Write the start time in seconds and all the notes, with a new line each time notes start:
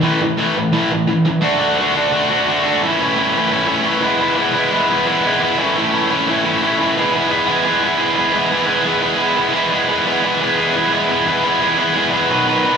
0.03 A2 E3 A3
0.21 A2 E3
0.38 A2 E3 A3
0.57 A2 E3
0.73 A2 E3 A3
0.92 A2 E3
1.07 A2 E3
1.25 A2 E3
1.42 D3 A3 D4 F#4
1.59 D3 A3 D4 F#4
1.78 D3 A3 D4 F#4
1.94 D3 A3 D4 F#4
2.11 D3 A3 D4 F#4
2.29 D3 A3 D4 F#4
2.48 D3 A3 D4 F#4
2.63 D3 A3 D4 F#4
2.82 A2 E3 A3 C#4 E4
3.00 A2 E3 A3 C#4 E4
3.16 A2 E3 A3 C#4 E4
3.34 A2 E3 A3 C#4 E4
3.51 A2 E3 A3 C#4 E4
3.67 A2 E3 A3 C#4 E4
3.85 A2 E3 A3 C#4 E4
4.02 E3 G#3 B3 E4
4.20 E3 G#3 B3 E4
4.36 E3 G#3 B3 E4
4.54 E3 G#3 B3 E4
4.71 E3 G#3 B3 E4
4.90 E3 G#3 B3 E4
5.06 E3 G#3 B3 E4
5.24 E3 G#3 B3 E4
5.40 E3 G#3 B3 E4
5.58 A2 E3 A3 C#4 E4
5.76 A2 E3 A3 C#4 E4
5.92 A2 E3 A3 C#4 E4
6.11 A2 E3 A3 C#4 E4
6.28 A2 E3 A3 C#4 E4
6.44 A2 E3 A3 C#4 E4
6.62 A2 E3 A3 C#4 E4
6.78 A2 E3 A3 C#4 E4
6.97 E3 G#3 B3 E4 G#4
7.13 E3 G#3 B3 E4 G#4
7.29 E3 G#3 B3 E4 G#4
7.46 E3 G#3 B3 E4 G#4
7.63 E3 G#3 B3 E4 G#4
7.83 E3 G#3 B3 E4 G#4
7.97 E3 G#3 B3 E4 G#4
8.15 E3 G#3 B3 E4 G#4
8.32 E3 G#3 B3 E4 G#4
8.50 E3 G#3 B3 E4 G#4
8.65 E3 G#3 B3 E4 G#4
8.84 E3 G#3 B3 E4 G#4
9.01 E3 G#3 B3 E4 G#4
9.18 E3 G#3 B3 E4 G#4
9.35 E3 G#3 B3 E4 G#4
9.52 E3 G#3 B3 E4 G#4
9.70 E3 G#3 B3 E4 G#4
9.88 E3 G#3 B3 E4 G#4
10.05 E3 G#3 B3 E4 G#4
10.23 E3 G#3 B3 E4 G#4
10.40 E3 G#3 B3 E4 G#4
10.57 E3 G#3 B3 E4 G#4
10.76 E3 G#3 B3 E4 G#4
10.92 E3 G#3 B3 E4 G#4
11.09 E3 G#3 B3 E4 G#4
11.27 E3 G#3 B3 E4 G#4
11.44 E3 G#3 B3 E4 G#4
11.60 E3 G#3 B3 E4 G#4
11.77 E3 G#3 B3 E4 G#4
11.94 E3 G#3 B3 E4 G#4
12.11 E3 G#3 B3 E4 G#4
12.30 B2 D#3 F#3 B3 D#4 B4
12.46 B2 D#3 F#3 B3 D#4 B4
12.63 B2 D#3 F#3 B3 D#4 B4